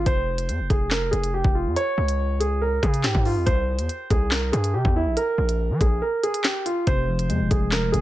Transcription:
0.06 F1 C5, kick, closed hi-hat
0.38 closed hi-hat
0.49 F2, closed hi-hat
0.59 F1
0.70 F1 G#4, kick, closed hi-hat
0.91 A#4, snare, clap
1.11 F1 G#4, closed hi-hat
1.24 closed hi-hat
1.34 G4
1.44 F1, kick
1.55 F4
1.66 F2
1.76 C#5, closed hi-hat
1.98 C#2
2.08 closed hi-hat
2.40 G#4, closed hi-hat
2.62 A#4
2.83 C#3 G#4, kick, closed hi-hat
2.94 closed hi-hat
3.04 G#2 G4, snare, clap, closed hi-hat
3.15 G#2, kick
3.25 F4, open hi-hat
3.36 F2
3.46 C2 C5, kick, closed hi-hat
3.79 E2, closed hi-hat
3.89 closed hi-hat
4.10 C2 G#4, kick, closed hi-hat
4.31 A#4, snare, clap
4.52 G2 G#4, closed hi-hat
4.64 closed hi-hat
4.74 C3 G4
4.85 E2, kick
4.96 E4
5.06 A#1
5.17 A#4, closed hi-hat
5.38 A#1
5.49 closed hi-hat
5.70 F3
5.81 A#1 G#4, kick, closed hi-hat
6.02 A#4
6.23 G#4, closed hi-hat
6.34 closed hi-hat
6.44 G4, snare, clap, closed hi-hat
6.66 F4, closed hi-hat
6.87 F1 C3 C5, kick, closed hi-hat
7.08 F3
7.19 closed hi-hat
7.29 F2 G#3, closed hi-hat
7.40 F1
7.51 F1 G#4, kick, closed hi-hat
7.72 A#4, snare, clap
7.92 F1 C3 G#4, closed hi-hat

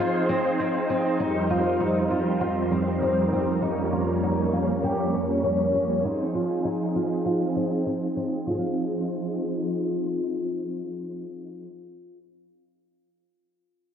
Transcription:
Already playing: F3 C4 D#4 G#4 C5
0.00 F4
0.29 C4
0.60 C4
0.90 C4
1.20 F2 G3 C4 D#4 A#4
1.50 F4
1.80 D#4
2.11 F4
2.41 F4
2.71 C4
3.02 C4
3.33 C4
3.62 A#3 C#4 D#4 C#5
3.92 F4
4.23 D#4
4.53 F4
4.84 G4
5.14 C#4
5.44 C#4
5.74 C#4
6.04 F3 C4 D#4 G#4 C5
6.34 F4
6.65 D#4
6.95 F4
7.25 F4
7.56 C4
7.86 C4
8.17 C4
8.46 F3 C4 D#4 F4 G#4 C5
8.51 G#4 C5
8.59 F5

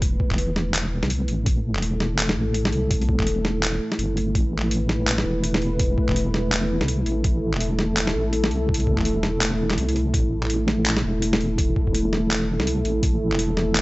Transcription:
Already playing: E1 A3 E4 B4
0.02 kick, closed hi-hat
0.20 kick
0.31 E1, kick, clap
0.38 closed hi-hat
0.56 snare
0.74 clap, closed hi-hat
1.03 C2, snare
1.10 closed hi-hat
1.28 A1, closed hi-hat
1.46 A4, kick, closed hi-hat
1.75 E1, clap
1.82 closed hi-hat
2.00 snare
2.19 clap, closed hi-hat
2.29 snare
2.36 A1
2.54 closed hi-hat
2.65 snare
2.72 C2, closed hi-hat
2.91 kick, closed hi-hat
3.02 closed hi-hat
3.09 kick
3.19 E1, kick, clap
3.27 closed hi-hat
3.45 snare
3.63 clap, closed hi-hat
3.92 snare
3.99 G1, closed hi-hat
4.17 closed hi-hat
4.35 A1 B4, kick, closed hi-hat
4.58 clap
4.71 closed hi-hat
4.89 snare
5.07 clap, closed hi-hat
5.18 snare
5.25 E1
5.44 closed hi-hat
5.54 snare
5.62 closed hi-hat
5.79 kick, closed hi-hat
5.98 kick
6.09 E1, kick, clap
6.16 closed hi-hat
6.34 snare
6.52 clap, closed hi-hat
6.81 C2, snare
6.88 closed hi-hat
7.06 A1, closed hi-hat
7.24 A4, kick, closed hi-hat
7.53 E1, clap
7.60 closed hi-hat
7.79 snare
7.97 clap, closed hi-hat
8.07 snare
8.15 A1
8.33 closed hi-hat
8.44 snare
8.51 C2, closed hi-hat
8.69 kick
8.74 closed hi-hat
8.87 kick
8.98 E1, kick, clap
9.05 closed hi-hat
9.23 snare
9.41 clap, closed hi-hat
9.70 clap, snare
9.77 C2, closed hi-hat
9.89 closed hi-hat
9.96 closed hi-hat
10.14 A1 A4, kick, closed hi-hat
10.43 clap
10.50 closed hi-hat
10.68 snare
10.86 clap, closed hi-hat
10.97 snare
11.04 E1
11.22 closed hi-hat
11.33 snare
11.41 closed hi-hat
11.58 kick, closed hi-hat
11.76 kick
11.87 E1, kick
11.95 closed hi-hat
12.13 snare
12.31 clap, closed hi-hat
12.59 C2, snare
12.67 closed hi-hat
12.85 A1, closed hi-hat
13.03 kick, closed hi-hat
13.32 E1, clap
13.39 closed hi-hat
13.57 snare
13.75 clap, closed hi-hat

